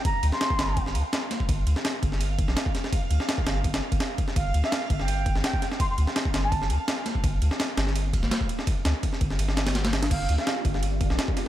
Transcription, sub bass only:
X:1
M:4/4
L:1/16
Q:1/4=167
K:Gm
V:1 name="Sub bass" clef=bass
z2 D,, z3 G,,,4 D,, z4 z | G,,,2 D,, z3 G,,,4- G,,, B,,, z4 | z2 D,, z3 G,,,4 z G,,, z4 | G,,,2 D,, z3 G,,,4- G,,, G,,, z4 |
z2 D,, z3 G,,,4 D,, z4 z | G,,,2 D,, z3 G,,,4- G,,, G,,, z4 | z2 D,, z3 G,,,2 G,,,8 | G,,,2 D,, z3 G,,,4- G,,, B,,, z4 |]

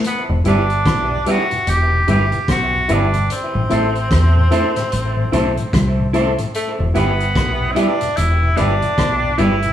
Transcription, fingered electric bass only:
X:1
M:4/4
L:1/16
Q:"Swing 16ths" 1/4=74
K:Em
V:1 name="Fingered electric bass" clef=bass
z E,,, G,,,2 B,,,2 z2 E,,,2 G,,, z B,,,2 G,,,2 | z A,,, A,,,2 E,,2 z2 A,,,2 B,,, z C,,3 z | z E,,, G,,,2 B,,,2 z2 E,,,2 G,,, z B,,,2 G,,,2 |]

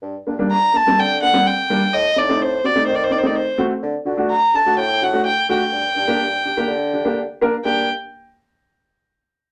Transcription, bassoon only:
X:1
M:4/4
L:1/8
Q:1/4=126
K:Gm
V:1 name="Bassoon" clef=bass
G,, G,,3 D,4 | A,, A,,3 E,4 | D, D,2 z A,,4 | G,, G,,3 D,4 |
G,, z6 z |]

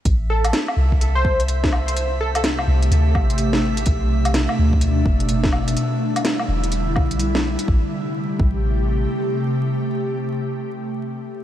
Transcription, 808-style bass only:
X:1
M:4/4
L:1/8
Q:"Swing 16ths" 1/4=126
K:Ador
V:1 name="808-style bass" clef=bass
A,,,2 z C,,4- C,,- | C,,3 C,, D,, A,,,3 | B,,,2 z D,,2 F,,,3 | z3 E,,,2 B,,,2 z |
A,,, z2 A,,,3 z2 | z8 |]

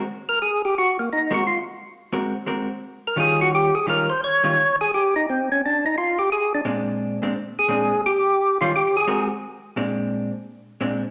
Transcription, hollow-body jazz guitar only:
X:1
M:4/4
L:1/8
Q:"Swing" 1/4=173
K:Bbdor
V:1 name="Hollow-body jazz guitar"
z6 z [A,C_GB] | z4 [A,C_GB] z [A,CGB] z | z2 [E,G,DF]3 z [E,G,DF] z | z [E,G,DF] z6 |
z6 [B,,A,C=D]2- | [B,,A,C=D] [B,,A,CD] z2 [B,,A,CD] z3 | z [E,G,DF] z2 [A,C_GB] z3 | [B,,A,C=D]3 z3 [B,,A,CD] z |]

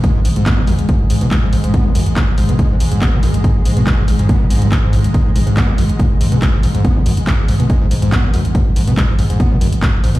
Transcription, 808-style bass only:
X:1
M:4/4
L:1/16
Q:1/4=141
K:G#m
V:1 name="808-style bass" clef=bass
z G,,, G,,, G,,, z G,,, G,,, G,,, z G,,, G,,, G,,, z G,,, G,,, G,,, | z G,,, G,,, G,,, z G,,, G,,, G,,, z G,,, G,,, G,,, z G,,, G,,, G,,, | z G,,, G,,, G,,, z G,,, G,,, G,,, z G,,, G,,, G,,, z G,,, G,,, G,,, | z G,,, G,,, G,,, z G,,, G,,, G,,, z G,,, G,,, G,,, z G,,, G,,, G,,, |
z G,,, G,,, G,,, z G,,, G,,, G,,, z G,,, G,,, G,,, z G,,, G,,, G,,, | z G,,, G,,, G,,, z G,,, G,,, G,,, z G,,, G,,, G,,, z G,,, G,,, G,,, |]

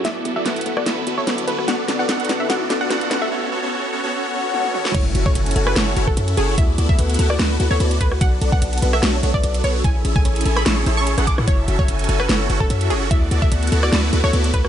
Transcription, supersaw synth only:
X:1
M:4/4
L:1/16
Q:"Swing 16ths" 1/4=147
K:F#m
V:1 name="Supersaw synth"
[B,EFAd]2 [B,EFAd] [B,EFAd] [B,EFAf]2 [B,EFAf]2 [B,EFAB]2 [B,EFAB] [B,EFAe] [B,EFAd]2 [B,EFAB]2 | [B,DFAd]2 [B,DFAd] [B,DFAd] [B,DFAf]2 [B,DFAf]2 [B,DFAd]2 [B,DFAd] [B,DFAd] [B,DFAf]2 [B,DFAf]2 | [B,CFAc]2 [B,CFAc] [B,CFAc] [B,CFAc]2 [B,CFAc] [B,CFAc] [B,CFAc]2 [B,CFAc]2 [B,CFAc]2 [B,CFAc]2 | [CEFAe]2 [CEFAe] [CEFAe] [CEFAg]2 [CEFAg]2 [CEFAc]2 [CEFAc] [CEFAf] [CEFAe]2 [CEFAc]2 |
[B,EFAd]2 [B,EFAd] [B,EFAd] [B,EFAf]2 [B,EFAf]2 [B,EFAB]2 [B,EFAB] [B,EFAe] [B,EFAd]2 [B,EFAB]2 | [B,DFAd]2 [B,DFAd] [B,DFAd] [B,DFAf]2 [B,DFAf]2 [B,DFAc]2 [B,DFAc] [B,DFAe] [B,DFAd]2 [B,DFAc]2 | [CEGAe]2 [CEGAe] [CEGAe] [CEGAg]2 [CEGAg]2 [CEGAc]2 [CEGAc]3 [CEGAf]2 [CEGAf] | [CEFAe]2 [CEFAe] [CEFAe] [CEFAg]2 [CEFAg]2 [CEFAc]2 [CEFAc] [CEFAf] [CEFAe]2 [CEFAc]2 |
[B,EFAd]2 [B,EFAd] [B,EFAd] [B,EFAf]2 [B,EFAf]2 [B,EFAB]2 [B,EFAB] [B,EFAe] [B,EFAd]2 [B,EFAB]2 |]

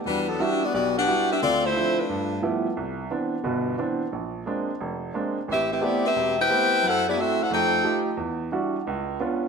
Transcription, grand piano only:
X:1
M:4/4
L:1/8
Q:"Swing" 1/4=177
K:Em
V:1 name="Grand piano"
E,,2 [G,DEF] z B,,,2 [G,DEF] z | D,,2 [=F,CDE] z G,,2 [F,G,A,B,E] z | C,,2 [E,B,CD] z [G,,,B,,]2 [E,B,CD] z | ^A,,,2 [^G,^A,^B,D] z ^E,,,2 [G,A,B,D] z |
A,,,2 [A,B,CG] z E,,,2 [A,B,CG] z | F,,2 [A,EF] z [=F,,A,]2 [A,_E=FG] z | E,,2 [G,DEF] z ^C,,2 [B,^CD^E] z |]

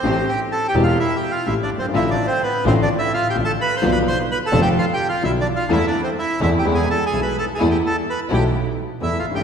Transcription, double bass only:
X:1
M:4/4
L:1/8
Q:1/4=127
K:Am
V:1 name="Double bass" clef=bass
A,,, z2 E,,, z2 A,,, G,,, | A,,, z2 A,,, z2 A,,, z | B,,, z2 F,,, z2 B,,, z | E,, z2 E,, E,, z B,,, z |
E,, z2 B,,, z2 E,, A,,, |]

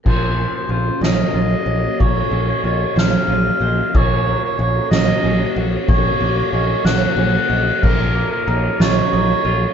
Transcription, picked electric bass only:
X:1
M:6/8
L:1/8
Q:3/8=62
K:Bbm
V:1 name="Picked electric bass" clef=bass
B,,,2 B,,, B,,, B,,, B,,, | B,,, B,,, B,,, B,,, B,,, B,,, | B,,,2 B,,, B,,, B,,, B,,, | B,,, B,,, B,,, B,,, B,,, B,,, |
B,,,2 B,,, B,,, B,,, B,,, |]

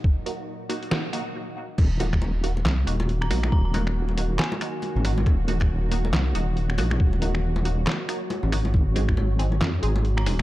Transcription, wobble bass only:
X:1
M:4/4
L:1/16
Q:"Swing 16ths" 1/4=138
K:Ebdor
V:1 name="Wobble bass" clef=bass
z16 | E,,,8 C,,2 E,,,4 B,,,2 | E,,,8 z4 z A,,,3 | E,,,8 C,,2 E,,,4 B,,,2 |
E,,,8 z4 z A,,,3 | A,,,8 F,,2 A,,,4 E,,,2 |]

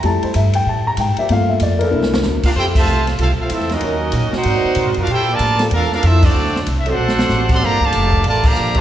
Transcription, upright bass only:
X:1
M:4/4
L:1/8
Q:"Swing" 1/4=190
K:F
V:1 name="Upright bass" clef=bass
F,, z G,,2 A,,2 _A,, z | G,,2 F,,2 C,,2 D,, z | F,,2 C,,2 C,, z E,,2 | _E,,2 B,, z _A,, z (3C, A,, _G,, |
B,,2 A,,2 E,, z F,,2 | D,,2 C,,2 B,,,2 A,,,2 | G,,,2 F,,,2 A,,,2 B,,,2 |]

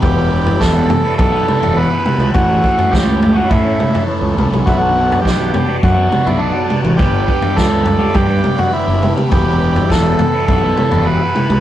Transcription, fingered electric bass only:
X:1
M:4/4
L:1/16
Q:1/4=104
K:Edor
V:1 name="Fingered electric bass" clef=bass
E,,,4 E,,,2 z2 B,,,2 z E,,,2 z2 C,, | A,,,2 z2 C,,4 A,,2 z3 C,, C,, B,,, | B,,,4 B,,,2 z2 F,,2 z B,,,2 z2 A,,, | G,,,2 z2 C,,4 G,,2 z3 F,,,2 z |
E,,,4 E,,,2 z2 B,,,2 z E,,,2 z2 C,, |]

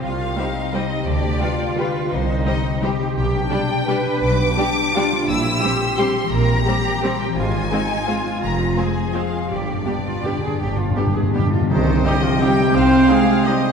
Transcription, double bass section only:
X:1
M:3/4
L:1/8
Q:1/4=169
K:Cphr
V:1 name="Double bass section" clef=bass
C,,2 z4 | =D,,2 z4 | C,,2 z4 | [K:Cm] =B,,,2 z4 |
=B,,,2 z4 | B,,,2 z4 | B,,,2 z4 | A,,,2 z4 |
F,,,2 z4 | G,,,2 z4 | G,,,2 z4 | C,,2 z4 |
C,,2 z4 |]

